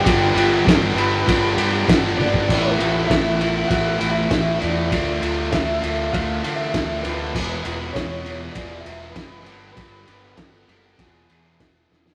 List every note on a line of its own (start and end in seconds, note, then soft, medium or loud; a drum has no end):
0.04 0.32 G1 medium
0.04 0.33 G2 medium
0.04 0.34 D3 medium
0.04 0.34 G3 medium
0.04 0.35 B3 loud
0.04 0.35 D4 medium
0.04 0.62 G4 medium
0.04 0.36 G4 medium
0.04 kick loud
0.04 ride loud
0.34 0.61 G1 loud
0.34 0.64 G2 medium
0.34 0.65 D3 medium
0.34 0.65 G3 loud
0.34 0.66 B3 medium
0.34 0.66 D4 medium
0.34 0.67 G4 medium
0.34 ride medium
0.65 0.93 G1 medium
0.65 0.94 G2 medium
0.65 0.94 D3 medium
0.65 0.95 G3 medium
0.65 0.96 B3 medium
0.65 0.96 D4 medium
0.65 0.96 G4 medium
0.65 kick loud
0.65 snare loud
0.65 ride medium
0.94 1.22 G1 medium
0.94 1.25 G2 medium
0.94 1.25 D3 medium
0.94 1.26 G3 medium
0.94 1.27 B3 medium
0.94 1.27 D4 loud
0.94 1.27 G4 medium
0.94 2.13 B4 medium
0.94 ride medium
1.26 1.54 G1 medium
1.26 1.54 G2 medium
1.26 1.55 D3 medium
1.26 1.56 G3 medium
1.26 1.56 B3 medium
1.26 1.56 D4 medium
1.26 1.57 G4 medium
1.26 kick loud
1.26 ride loud
1.56 1.86 G2 medium
1.56 1.83 G2 medium
1.56 1.87 D3 loud
1.56 1.87 G3 medium
1.56 1.87 B3 medium
1.56 1.88 D4 loud
1.56 1.88 G4 loud
1.56 ride medium
1.87 2.14 G1 medium
1.87 2.17 G2 medium
1.87 2.17 D3 medium
1.87 2.18 G3 medium
1.87 2.18 B3 medium
1.87 2.18 D4 medium
1.87 2.19 G4 medium
1.87 kick loud
1.87 snare loud
1.87 ride medium
2.17 2.49 G1 medium
2.17 2.47 G2 medium
2.17 2.47 D3 medium
2.17 2.47 G3 medium
2.17 2.47 B3 medium
2.17 2.47 D4 medium
2.17 2.48 G4 medium
2.17 2.75 D5 loud
2.17 high tom medium
2.34 kick loud
2.48 2.75 A1 medium
2.48 2.77 A2 medium
2.48 2.79 E3 loud
2.48 2.79 A3 medium
2.48 2.79 B3 loud
2.48 2.80 E4 loud
2.48 kick loud
2.48 crash medium
2.79 3.06 A1 medium
2.79 3.08 A2 medium
2.79 3.10 E3 medium
2.79 3.10 A3 medium
2.79 3.10 B3 medium
2.79 3.11 E4 medium
2.79 ride medium
3.07 3.62 A1 medium
3.07 3.38 A2 medium
3.07 3.40 E3 medium
3.07 3.40 A3 medium
3.07 3.40 B3 medium
3.07 3.41 E4 medium
3.07 3.68 E5 medium
3.07 kick loud
3.07 snare loud
3.07 ride medium
3.40 3.68 A2 medium
3.40 3.70 E3 medium
3.40 3.69 A3 medium
3.40 3.70 B3 loud
3.40 3.71 E4 medium
3.40 ride medium
3.68 3.96 A1 medium
3.68 3.98 A2 medium
3.68 3.99 E3 medium
3.68 3.99 A3 medium
3.68 3.99 B3 medium
3.68 4.00 E4 medium
3.68 4.10 F#5 loud
3.68 kick loud
3.68 ride medium
3.99 4.27 A1 medium
3.99 4.28 A2 medium
3.99 4.29 E3 medium
3.99 4.29 A3 medium
3.99 4.29 B3 loud
3.99 4.31 E4 loud
3.99 ride medium
4.10 4.57 E5 medium
4.30 4.57 A1 medium
4.30 4.59 A2 medium
4.30 4.60 E3 medium
4.30 4.60 A3 medium
4.30 4.60 B3 medium
4.30 4.61 E4 medium
4.30 kick loud
4.30 snare loud
4.30 ride medium
4.58 4.89 A2 medium
4.58 4.90 E3 medium
4.58 4.90 A3 medium
4.58 4.90 B3 medium
4.58 5.16 D5 medium
4.62 4.88 E2 medium
4.62 4.92 E4 medium
4.62 snare soft
4.62 ride medium
4.91 5.18 D2 loud
4.91 5.20 D3 medium
4.91 5.21 A3 medium
4.91 5.21 D4 loud
4.91 5.22 F4 loud
4.91 kick loud
4.91 ride medium
5.21 5.48 D2 medium
5.21 5.51 D3 medium
5.21 5.52 A3 medium
5.21 5.52 D4 medium
5.21 5.52 F4 loud
5.21 ride medium
5.51 5.79 D2 medium
5.51 5.81 D3 medium
5.51 5.82 A3 medium
5.51 5.82 D4 medium
5.51 5.82 F4 medium
5.51 6.11 E5 loud
5.51 kick loud
5.51 snare loud
5.51 ride loud
5.82 6.09 D2 medium
5.82 6.11 D3 medium
5.82 6.12 A3 medium
5.82 6.12 D4 medium
5.82 6.12 F4 loud
5.82 ride medium
6.12 6.40 D2 medium
6.12 6.42 D3 medium
6.12 6.43 A3 medium
6.12 6.43 D4 medium
6.12 6.44 F4 medium
6.12 6.56 F5 loud
6.12 kick loud
6.12 ride loud
6.43 6.72 D3 loud
6.43 6.70 D3 medium
6.43 6.73 A3 loud
6.43 6.74 D4 loud
6.43 6.74 F4 loud
6.43 ride medium
6.56 7.04 E5 loud
6.73 7.00 D2 medium
6.73 7.03 D3 medium
6.73 7.03 A3 medium
6.73 7.03 D4 medium
6.73 7.04 F4 medium
6.73 kick loud
6.73 snare loud
6.73 ride loud
7.02 7.31 D2 loud
7.02 7.33 D3 medium
7.02 7.33 A3 medium
7.02 7.33 D4 medium
7.02 7.33 F4 medium
7.02 7.97 B4 loud
7.02 snare soft
7.02 ride medium
7.33 7.61 E1 medium
7.33 7.63 E2 medium
7.33 7.63 B2 medium
7.33 7.64 E3 loud
7.33 7.65 G#3 loud
7.33 7.65 B3 medium
7.33 7.65 G#4 medium
7.33 kick loud
7.33 crash loud
7.64 7.91 E1 loud
7.64 7.93 E2 medium
7.64 7.94 B2 medium
7.64 7.94 E3 medium
7.64 7.95 G#3 medium
7.64 7.96 B3 medium
7.64 7.96 G#4 loud
7.64 ride medium
7.93 8.48 E1 medium
7.93 8.23 E2 medium
7.93 8.24 B2 medium
7.93 8.24 E3 medium
7.93 8.25 G#3 medium
7.93 8.26 B3 medium
7.93 8.26 G#4 medium
7.93 8.51 C#5 loud
7.93 kick loud
7.93 snare loud
7.93 ride loud
8.24 8.53 E2 loud
8.24 8.55 B2 loud
8.24 8.55 E3 loud
8.24 8.56 G#3 medium
8.24 8.57 B3 loud
8.24 8.56 G#4 loud
8.24 ride medium
8.51 8.85 E2 medium
8.51 8.80 D5 medium
8.51 ride medium
8.56 8.82 E1 medium
8.56 8.85 B2 medium
8.56 8.86 E3 medium
8.56 8.87 G#3 medium
8.56 8.87 B3 loud
8.56 8.87 G#4 loud
8.56 kick loud
8.80 9.11 E5 medium
8.86 9.12 E1 medium
8.86 9.14 E2 medium
8.86 9.15 B2 loud
8.86 9.15 E3 loud
8.86 9.16 G#3 loud
8.86 9.17 B3 loud
8.86 9.17 G#4 loud
8.86 ride medium
9.11 9.71 B4 medium
9.16 9.47 F#1 medium
9.16 9.45 E2 medium
9.16 9.45 B2 medium
9.16 9.45 E3 medium
9.16 9.46 G#3 medium
9.16 9.48 B3 medium
9.16 9.46 G#4 loud
9.16 kick loud
9.16 snare loud
9.16 ride loud
9.46 9.73 G1 medium
9.46 9.75 G2 medium
9.46 9.75 D3 medium
9.46 9.76 G3 loud
9.46 9.76 B3 medium
9.46 9.76 D4 loud
9.46 9.77 G4 medium
9.46 ride medium
9.72 10.06 G2 medium
9.72 10.06 D3 medium
9.72 10.36 B4 loud
9.77 10.04 G1 medium
9.77 10.07 G3 medium
9.77 10.07 B3 medium
9.77 10.07 D4 medium
9.77 10.08 G4 loud
9.77 kick loud
9.77 ride medium
10.07 10.35 G1 medium
10.07 10.36 G2 medium
10.07 10.36 D3 medium
10.07 10.37 G3 medium
10.07 10.37 B3 medium
10.07 10.38 D4 loud
10.07 10.38 G4 medium
10.07 ride medium
10.36 10.64 G1 medium
10.36 10.67 G2 medium
10.36 10.68 D3 medium
10.36 10.68 G3 medium
10.36 10.69 B3 medium
10.36 10.69 D4 medium
10.36 10.69 G4 medium
10.36 10.98 A4 medium
10.36 kick loud
10.36 snare loud
10.36 ride medium
10.69 10.95 F#1 medium
10.69 10.97 G2 medium
10.69 10.98 D3 medium
10.69 10.98 G3 medium
10.69 10.98 B3 medium
10.69 10.98 D4 loud
10.69 10.98 G4 loud
10.69 ride medium
10.99 11.26 E1 medium
10.99 11.28 E2 medium
10.99 11.29 B2 medium
10.99 11.29 E3 medium
10.99 11.29 B3 loud
10.99 11.30 D4 medium
10.99 11.86 G#4 medium
10.99 11.30 G#4 medium
10.99 kick loud
10.99 ride loud
11.29 11.59 E2 loud
11.29 11.56 E2 medium
11.29 11.59 B2 loud
11.29 11.60 E3 medium
11.29 11.60 B3 loud
11.29 11.61 D4 loud
11.29 11.61 G#4 loud
11.29 ride medium
11.60 11.86 E1 medium
11.60 11.89 E2 medium
11.60 11.89 B2 medium
11.60 11.90 E3 medium
11.60 11.90 B3 medium
11.60 11.90 D4 medium
11.60 11.91 G#4 medium
11.60 kick loud
11.60 snare loud
11.60 ride loud
11.90 12.14 E1 medium
11.90 12.14 E2 medium
11.90 12.14 B2 medium
11.90 12.14 E3 medium
11.90 12.14 B3 medium
11.90 12.14 D4 medium
11.90 12.14 G#4 medium
11.90 snare medium
12.06 snare medium